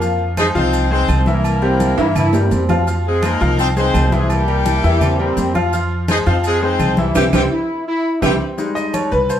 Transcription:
Already playing: F2 A#3
0.01 F3 F4 F5, maracas
0.19 high conga
0.37 G#3 D#4 G#4 C5 D#5, high conga, low agogo, claves, maracas
0.55 C2 F3 C4 D#4 F4 C5 F5, high conga, low agogo, maracas
0.73 high conga, low agogo, maracas
0.91 G#3 C4 D#4 G#4 C5, high conga
1.08 C2, high conga, low agogo, claves, maracas
1.26 E3 A#3 E4 A#4 E5, high conga, maracas
1.44 high conga, low agogo, claves, maracas
1.62 G3 C4 G4 A#4, high conga, low agogo
1.80 high conga, low agogo, maracas
1.98 G2 E3 E4 E5, high conga, high timbale, maracas
2.15 E4, high conga, low conga, low agogo, claves, maracas
2.33 G3 G4 A#4, high conga, low timbale, maracas
2.42 C4
2.51 F2 C4, high conga, low timbale, low agogo, maracas
2.69 F3 F4 F5, high conga, low timbale, low agogo, claves, maracas
2.87 F3 F4 F5, high conga, maracas
3.05 G#3 C4 G#4, high conga
3.22 G#3 A#3 D#4 G#4 A#4 C5, high conga, low agogo, claves, maracas
3.40 C2 F3 F4 F5, high conga, low agogo, maracas
3.58 C4 D#4 C5, high conga, low agogo, maracas
3.77 G#3 C4 D#4 G#4 C5, high conga, maracas
3.94 C2, high conga, low timbale, low agogo, claves, maracas
4.12 E3 G#3 C4 E4 G#4 E5, high conga, maracas
4.30 G3 A#3 G4, high conga, low agogo, claves, maracas
4.48 G3 G4 A#4, high conga, low agogo
4.66 E4, high conga, low agogo, maracas
4.84 E2 E3 E4 E5, high conga, maracas
5.01 C4, high conga, low conga, low agogo, claves, maracas
5.19 G3 C4 G4 A#4, high conga
5.37 F2, high conga, low timbale, low agogo, maracas
5.55 F3 F4 F5, high conga, low agogo, claves, maracas
5.73 F3 F4 F5, high conga, maracas
5.91 high conga
6.08 G#3 D#4 G#4 C5 D#5, high conga, low agogo, claves, maracas
6.26 F2 F3 C4 D#4 F4 C5 F5, high conga, low agogo, maracas
6.44 G#3 C4 G#4, high conga, low agogo, maracas
6.62 G#3 C4 D#4 G#4 C5, high conga
6.79 C2, high conga, low agogo, claves, maracas
6.97 E3 G3 E4 E5, high conga, maracas
7.15 C2 G3 C4 E4 G4, high conga, high timbale, claves, maracas
7.33 C2 G3 C4 E4 G4, high conga, high timbale, claves, maracas
7.51 E4
7.87 E4
8.22 C2 G3 C4 E4 G4, high conga, high timbale, claves, maracas
8.57 G3 G#3 D#4, high conga, maracas
8.75 D#5, high conga, maracas
8.94 C#5, high conga, low agogo, claves, maracas
9.11 C2 B4, high conga, low agogo, maracas
9.29 C5, high conga, low agogo, maracas

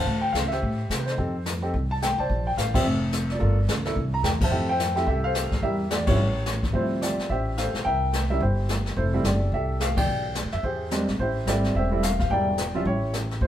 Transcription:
Already playing: C5 F5 A5
0.06 D2, brush sweep
0.21 G5
0.33 C#2 F5, snare, hi-hat pedal
0.48 E5, snare
0.52 G4 C5
0.62 A2, brush sweep, kick
0.89 C3, snare, hi-hat pedal
0.99 B4
1.06 D#4 A4 C5, snare
1.18 F2 C4 D#4 G4 A4, brush sweep, kick
1.46 snare, hi-hat pedal
1.62 C4 D#4 G4 A4
1.74 C2, brush sweep, kick
1.91 A5
2.02 G5, snare, hi-hat pedal
2.18 C2 C5 D5 A5
2.29 A#1, brush sweep, kick
2.47 G5
2.57 A1 F5, snare, hi-hat pedal
2.74 C4 D4 F4 G4 C5 E5, kick, crash
2.84 F1, brush sweep
3.13 snare, hi-hat pedal
3.30 F4 A#4 D5, snare
3.39 G1 A#3 D4 F4 A4, brush sweep, kick
3.68 C#2, snare, hi-hat pedal
3.85 A#3 D4 E4 A4, snare
3.96 C2, brush sweep, kick
4.14 A#5
4.23 E2 G5, snare, hi-hat pedal
4.41 C5 E5 A5, kick, crash
4.51 F2 A3 C4 E4 G4, brush sweep
4.69 C5 E5 G5
4.80 snare, hi-hat pedal
4.95 A3 C4 E4 G4, snare
5.07 C2 G4 A4 E5, brush sweep, kick
5.24 A4 C5 F5
5.35 snare, hi-hat pedal
5.51 muted upright bass stroke, kick, snare
5.62 E2 G3 A#3 D4 E4 G4 A#4 E5, brush sweep, kick
5.91 D5, snare, hi-hat pedal
6.07 G#1 F3 G3 C#4 E4 G4 C#5, kick, crash
6.17 A1, brush sweep
6.46 snare, hi-hat pedal
6.63 kick, snare
6.73 D2 F3 G3 C4 E4 C5 E5, brush sweep, kick
6.77 F4
7.02 F4 G4 D5, snare, hi-hat pedal
7.18 muted upright bass stroke, snare
7.29 A1 G4 C5 E5, brush sweep, kick
7.58 A4 C5 F5, snare, hi-hat pedal
7.74 B1, snare
7.85 C2 A#4 E5 G5, brush sweep, kick
8.13 snare, hi-hat pedal
8.30 G3 A#3 C#4 E4 E5
8.40 G1 E4 G4 C5, brush sweep, kick
8.69 snare, hi-hat pedal
8.86 snare
8.96 F1 E4 A4 C5, brush sweep, kick
9.13 G3 A3 C4 E4
9.24 F#1 G4 A4 D5, snare, hi-hat pedal
9.52 C2 G4 A4 E5, brush sweep, kick
9.80 F5, snare, hi-hat pedal
9.97 D5 G5, kick, ride
10.07 B1, brush sweep
10.35 snare, hi-hat pedal
10.44 D2
10.52 F2 E5, snare
10.63 E2 G4 G#4 C5, brush sweep, kick
10.91 G3 G#3 C4 D4, snare, hi-hat pedal
11.07 A#1, snare
11.19 A1 E4 G4 C5, brush sweep, kick
11.46 G#1 G3 A3 C4 E4 D5, snare, hi-hat pedal
11.50 G4
11.64 snare
11.75 E1 G4 C5 E5, brush sweep, kick
11.91 G3 A3 C4 E4
12.03 F5, snare, hi-hat pedal
12.20 F5, kick, snare
12.30 E1 G3 A#3 D4 E4 A#4 D5 G5, brush sweep, kick
12.58 snare, hi-hat pedal
12.75 F3 G3 C#4 F4 E5
12.85 A1 E4 G4 C#5, brush sweep, kick
13.14 snare, hi-hat pedal
13.31 snare
13.41 D2 F4 C5, brush sweep, kick

